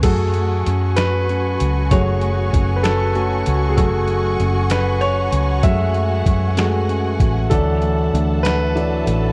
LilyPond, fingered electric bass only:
\new Staff \with { instrumentName = "Fingered electric bass" } { \clef bass \time 6/8 \key fis \minor \tempo 4. = 64 fis,4 fis,4. cis,8 | fis,,4 fis,,4. cis,8 | fis,,4 fis,,4. cis,8 | fis,4 fis,4. a,,8 |
d,4 d,4. a,,8 | }